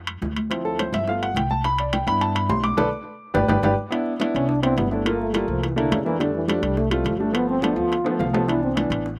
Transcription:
Already playing: F2
0.07 high conga, high timbale
0.22 D2, high bongo, low bongo, high conga
0.36 high conga, high timbale
0.50 F3 C4 E4, high bongo, high timbale
0.65 A4, high bongo, high conga
0.79 C5, high bongo, high conga, high timbale
0.93 G1 E5, high conga, high timbale
1.08 A3 B3 F4 F5, high bongo, high conga
1.22 F#5, high conga, high timbale
1.34 C2 G5, high bongo, low bongo, high conga, high timbale
1.50 A5, high bongo, high conga
1.64 B5, high bongo, high conga, high timbale
1.78 D5, high conga, high timbale
1.93 G5, high bongo, high conga, high timbale
2.07 G2 B3 D4 E4 B5, high conga, high timbale
2.21 A5, high bongo, high conga, high timbale
2.35 B5, high conga, high timbale
2.49 B1 C6, high bongo, low bongo, high conga, low timbale
2.64 D6, high conga, high timbale
2.77 B1 A4 B4 D5, low bongo, high conga, high timbale
3.34 G1 G4 B4 D5, low bongo, high conga, high timbale
3.48 G1 G4 B4 D5, low bongo, high conga, high timbale
3.62 G1 G4 B4 D5, low bongo, high conga, high timbale
3.91 B3 D4 E4, high bongo, high conga, high timbale
4.06 high bongo, high conga
4.20 B3 D4 E4, high bongo, high conga, high timbale
4.34 C2 C#4, high conga, high timbale
4.48 D4, high bongo, high conga
4.62 B3 C4 D4 E4, high conga, high timbale
4.76 G1 B3, high bongo, low bongo, high conga, high timbale, low timbale
4.91 A3 B3 D4 E4, high bongo, high conga
5.05 A3 A#3 F4, high bongo, high conga, high timbale
5.20 A3, high bongo, high conga
5.33 G3 A3 A#3 F4, high bongo, high conga, high timbale
5.48 C2 F3, high conga
5.63 E3, high bongo, high conga, high timbale
5.76 D3 A3 A#3 D4 E4, high bongo, high conga, high timbale
5.92 F2 C#3, high bongo, low bongo, high conga, high timbale, low timbale
6.05 E3 A3 A#3 D4 E4, high bongo, high conga
6.19 D3 G3 A3 D4, high bongo, high conga, high timbale
6.34 E3, high bongo, high conga
6.48 F3 G3 A3 D4, high bongo, high conga, high timbale
6.63 C2 G3, high timbale
6.77 A3, high bongo, high conga
6.90 C3 G3 A3 F4, high bongo, high conga, high timbale
7.04 G1 F3, high bongo, low bongo, high conga, high timbale
7.19 G3 A3 D4, high bongo
7.32 F3 A3 B3, high bongo, high conga, high timbale
7.49 C4, high bongo, high conga
7.61 F3 A3 B3 D4, high bongo, high conga, high timbale
7.76 D2 F4, high conga
7.91 high bongo, high conga, high timbale
8.04 F3 A3 B3, high bongo, high conga, high timbale
8.19 C2 F5, high bongo, low bongo, high conga
8.33 F3 A3 B3 A5, high bongo, high conga, low timbale
8.47 E3 B3 D4 E4, high bongo, high conga, high timbale
8.62 C4, high bongo, high conga
8.75 E3 B3 D4, high bongo, high conga, high timbale
8.90 A1, high timbale
9.06 high bongo, high conga

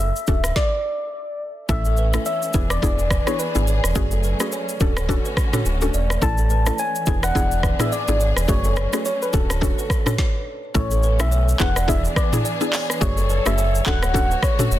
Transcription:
Already playing: F#1
0.00 E5
0.16 shaker
0.27 D1 C#4 D4 F#4 A4, kick, shaker
0.44 cross-stick, shaker
0.56 D5, kick, snare
1.69 A1 E3 A3 C#4 E4 A4 E5, kick, shaker
1.85 A4, shaker
1.97 B4, shaker
2.14 A3 C#4 E4 A4, cross-stick, shaker
2.26 C#5 E5, shaker
2.42 shaker
2.53 E1 B3 D4 E4 G#4 B4, kick, shaker
2.70 D5, cross-stick, shaker
2.82 E1 B3 D4 E4 G#4 D5, kick, shaker
2.99 shaker
3.11 B4, kick, cross-stick, shaker
3.27 B3 D4 E4 G#4 C#5, cross-stick, shaker
3.39 B4 D5, shaker
3.55 G#1 B3 D4 E4 G#4, shaker
3.67 C#5, shaker
3.84 E1 B4, cross-stick, shaker
3.95 F#1 F#3 A3 C#4 F#4 G#4, kick, shaker
4.11 A4, shaker
4.23 B4, shaker
4.40 A3 C#4 F#4 G#4, cross-stick, shaker
4.52 C#5, shaker
4.69 shaker
4.80 D1 D3 A3 C#4 D4 F#4 A4, kick, shaker
4.97 C#5, cross-stick, shaker
5.09 C#4 D4 F#4 A4, kick, shaker
5.25 B4, shaker
5.37 kick, cross-stick, shaker
5.53 C#4 D4 F#4 A4 C#5, cross-stick, mid tom, shaker
5.65 D1, shaker
5.81 C#4 D4 F#4 A4, shaker
5.94 E1 D5, shaker
6.10 cross-stick, shaker
6.22 A1 E3 A3 C#4 E4 A4 A5, kick, shaker
6.38 A4, shaker
6.50 B4, shaker
6.66 A3 C#4 E4 A4, cross-stick, shaker
6.78 C#5 G#5, shaker
6.95 shaker
7.06 E1 B3 D4 E4 G#4 B4, kick, shaker
7.23 D5 F#5, cross-stick, shaker
7.35 E1 B3 D4 E4 G#4 D5, kick, shaker
7.52 shaker
7.63 B4, kick, cross-stick, shaker
7.79 B3 D4 E4 G#4 E5, cross-stick, mid tom, shaker
7.92 D5, shaker
8.08 G#1 B3 D4 E4 G#4, shaker
8.20 C#5, shaker
8.37 E1 B4, cross-stick, shaker
8.48 F#1 F#3 A3 C#4 F#4 G#4 C#5, kick, shaker
8.64 A4, shaker
8.76 B4, cross-stick, shaker
8.93 A3 C#4 F#4 G#4, cross-stick, shaker
9.05 C#5, shaker
9.22 B4, shaker
9.33 D1 D3 A3 C#4 D4 F#4 A4, kick, shaker
9.50 C#5, cross-stick, shaker
9.61 C#4 D4 F#4 A4, kick, shaker
9.78 B4, shaker
9.90 kick, cross-stick, shaker
10.06 C#4 D4 F#4 A4 C#5, cross-stick, mid tom, shaker
10.18 kick, snare
10.74 A1 E3 A3 C#4 E4 A4 C#5, kick, shaker
10.91 A4, shaker
11.03 B4, shaker
11.20 B1 A3 C#4 E4 A4 E5, cross-stick, shaker
11.32 C#5, shaker
11.49 shaker
11.59 E1 B3 D4 E4 G#4 B4 F#5, kick, clap, shaker
11.76 D5, cross-stick, shaker
11.88 B3 D4 E4 G#4 D5 E5, kick, shaker
12.05 shaker
12.16 B4 D5, kick, cross-stick, shaker
12.32 B3 D4 E4 G#4, mid tom, shaker
12.45 D5, shaker
12.61 B3 D4 E4 G#4, shaker
12.73 C#5, clap, open hi-hat, shaker
12.90 B4, cross-stick, shaker
13.01 F#1 F#3 A3 C#4 F#4 G#4 A4 C#5, kick, shaker
13.17 A4, shaker
13.30 B4, shaker
13.46 F#1 A3 C#4 F#4 G#4 E5, cross-stick, shaker
13.58 C#5, shaker
13.75 shaker
13.86 D1 D3 A3 C#4 D4 F#4 A4 F#5, kick, clap, shaker
14.03 C#5, cross-stick, shaker
14.14 C#4 D4 F#4 A4 F#5, kick, shaker
14.31 B4, shaker
14.43 C#5, kick, cross-stick, shaker
14.59 C#4 D4 F#4 A4 C#5, mid tom, shaker
14.71 E1, shaker

